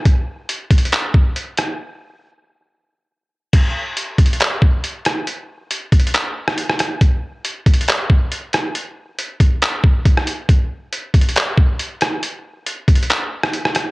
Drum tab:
CC |------------------------------------------------|------------------------------------------------|x-----------------------------------------------|------------------------------------------------|
HH |x-----------x-----x-x-x-x-----------x-----x-----|------------------------------------------------|x-----------x-----x-x-x-x-----------x-----x-----|x-----------x-----x-x-x-x-----------x-----x-----|
CP |------------------------x-----------------------|------------------------------------------------|------------------------x-----------------------|------------------------x-----------------------|
SD |------------------------------------------r-----|------------------------------------------------|------------------------------------------r-----|---------------------------------r-----r--r-----|
BD |o-----------------o-----------o-----------------|------------------------------------------------|o-----------------o-----------o-----------------|------------------o-----------------------------|

CC |------------------------------------------------|------------------------------------------------|------------------------------------------------|------------------------------------------------|
HH |x-----------x-----x-x-x-x-----------x-----x-----|x-----------x-----x-----x-----------x-----x-----|x-----------x-----x-x-x-x-----------x-----x-----|x-----------x-----x-x-x-x-----------x-----x-----|
CP |------------------------x-----------------------|------------------------x-----------------------|------------------------x-----------------------|------------------------x-----------------------|
SD |------------------------------------------r-----|---------------------------------------r--------|------------------------------------------r-----|---------------------------------r-----r--r-----|
BD |o-----------------o-----------o-----------------|------------------o-----------o-----o-----------|o-----------------o-----------o-----------------|------------------o-----------------------------|